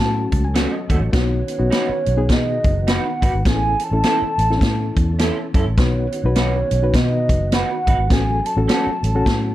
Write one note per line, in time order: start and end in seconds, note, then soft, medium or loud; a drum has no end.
0.00 0.26 A2 loud
0.00 1.11 F#3 medium
0.00 0.46 A3 medium
0.00 0.46 C#4 medium
0.00 1.11 C#4 medium
0.00 0.46 F#4 loud
0.00 1.11 A4 medium
0.00 0.92 A5 loud
0.32 0.65 C#2 medium
0.32 0.43 A5 medium
0.32 kick medium
0.32 closed hi-hat medium
0.45 0.55 G#5 medium
0.54 0.71 A3 medium
0.54 0.72 C#4 loud
0.54 0.72 F#4 loud
0.54 0.72 F#5 medium
0.54 snare loud
0.54 closed hi-hat loud
0.72 1.10 D#5 medium
0.90 0.99 D#2 medium
0.90 0.98 A3 medium
0.90 0.99 C#4 medium
0.90 0.99 F#4 medium
0.90 kick medium
0.90 closed hi-hat medium
1.00 1.10 A1 medium
1.12 1.41 B1 loud
1.12 3.44 D#3 medium
1.12 1.41 B3 medium
1.12 3.43 B3 medium
1.12 1.41 D#4 medium
1.12 1.41 F#4 medium
1.12 3.43 F#4 medium
1.12 2.34 C#5 loud
1.12 kick loud
1.12 snare loud
1.12 closed hi-hat medium
1.48 closed hi-hat medium
1.58 1.69 B1 medium
1.58 1.90 B3 medium
1.58 1.90 D#4 medium
1.58 1.91 F#4 medium
1.70 1.87 D#4 medium
1.70 1.88 F#4 medium
1.70 1.88 B4 medium
1.70 snare loud
1.70 closed hi-hat medium
1.89 muted fingered electric bass stroke soft
2.06 2.30 B1 medium
2.06 closed hi-hat medium
2.17 2.78 B3 medium
2.17 2.78 D#4 medium
2.17 2.78 G#4 medium
2.29 2.58 B2 loud
2.29 2.89 D#5 loud
2.29 kick medium
2.29 snare loud
2.29 closed hi-hat medium
2.64 2.97 F#1 medium
2.64 kick medium
2.64 closed hi-hat medium
2.87 3.04 D#4 medium
2.87 3.04 F#4 medium
2.87 3.04 B4 medium
2.87 snare loud
2.87 closed hi-hat loud
2.92 3.44 F#5 loud
3.22 3.32 G#1 loud
3.22 3.31 D#4 medium
3.22 3.31 F#4 medium
3.22 3.31 B4 medium
3.22 kick medium
3.22 closed hi-hat medium
3.33 3.43 G#1 medium
3.45 3.74 A1 loud
3.45 5.76 E3 medium
3.45 5.75 C#4 medium
3.45 3.73 C#4 medium
3.45 3.74 E4 medium
3.45 5.75 A4 medium
3.45 3.74 A4 medium
3.45 3.85 G#5 loud
3.45 kick loud
3.45 snare loud
3.45 closed hi-hat medium
3.80 closed hi-hat medium
3.84 5.57 A5 loud
3.91 4.01 A1 medium
3.91 4.23 C#4 medium
3.91 4.24 E4 medium
3.91 4.24 A4 medium
4.03 4.20 C#4 medium
4.03 4.20 E4 medium
4.03 4.21 A4 medium
4.03 snare loud
4.03 closed hi-hat medium
4.22 muted fingered electric bass stroke soft
4.38 4.57 A1 medium
4.38 closed hi-hat medium
4.50 4.55 C4 medium
4.50 5.11 E4 medium
4.50 5.12 A4 loud
4.50 snare soft
4.57 5.14 C#4 medium
4.61 4.90 A2 loud
4.61 kick medium
4.61 snare loud
4.61 closed hi-hat medium
4.96 5.30 E2 medium
4.96 kick loud
4.96 closed hi-hat medium
5.19 5.36 C#4 medium
5.19 5.36 E4 medium
5.19 5.37 A4 medium
5.19 snare loud
5.19 closed hi-hat loud
5.54 5.64 F#2 medium
5.54 5.63 C#4 medium
5.54 5.64 E4 medium
5.54 5.64 A4 medium
5.54 kick medium
5.54 closed hi-hat medium
5.67 5.78 A1 medium
5.78 6.06 B1 loud
5.78 8.08 D#3 medium
5.78 8.08 B3 medium
5.78 6.06 D#4 medium
5.78 8.08 F#4 medium
5.78 6.06 F#4 medium
5.78 6.06 B4 medium
5.78 6.97 C#5 loud
5.78 kick loud
5.78 snare loud
5.78 closed hi-hat medium
6.12 closed hi-hat medium
6.24 6.62 B1 medium
6.24 6.56 D#4 medium
6.24 6.56 F#4 medium
6.24 6.56 B4 medium
6.36 6.52 D#4 medium
6.36 6.53 F#4 medium
6.36 6.53 B4 medium
6.36 snare loud
6.36 closed hi-hat medium
6.71 6.90 B1 medium
6.71 closed hi-hat medium
6.82 7.43 D#4 medium
6.82 7.44 F#4 medium
6.82 7.44 B4 medium
6.94 7.31 B2 loud
6.94 7.53 D#5 loud
6.94 kick medium
6.94 snare loud
6.94 closed hi-hat medium
7.29 7.62 F#1 medium
7.29 kick medium
7.29 closed hi-hat medium
7.52 7.69 D#4 medium
7.52 7.69 F#4 medium
7.52 7.70 B4 medium
7.52 8.14 F#5 loud
7.52 snare loud
7.52 closed hi-hat loud
7.87 7.96 G#1 medium
7.87 7.96 D#4 medium
7.87 7.96 F#4 medium
7.87 7.96 B4 medium
7.87 kick medium
7.87 closed hi-hat medium
7.98 8.08 G#1 medium
8.09 8.39 A1 loud
8.09 9.55 F#3 medium
8.09 9.55 C#4 medium
8.09 8.38 C#4 medium
8.09 8.39 F#4 medium
8.09 9.55 A4 medium
8.09 8.39 A4 medium
8.09 8.46 G#5 loud
8.09 kick loud
8.09 snare loud
8.09 closed hi-hat medium
8.46 9.55 A5 loud
8.46 closed hi-hat medium
8.57 8.66 A1 loud
8.57 8.88 C#4 medium
8.57 8.88 F#4 medium
8.57 8.88 A4 medium
8.68 8.85 A3 medium
8.68 8.85 C#4 medium
8.68 8.85 F#4 medium
8.68 snare loud
8.68 closed hi-hat medium
8.87 muted fingered electric bass stroke soft
9.03 9.22 A1 medium
9.03 closed hi-hat medium
9.15 9.55 C#4 medium
9.15 9.55 F#4 medium
9.15 9.55 A4 loud
9.26 9.55 A2 loud
9.26 kick medium
9.26 snare loud
9.26 closed hi-hat medium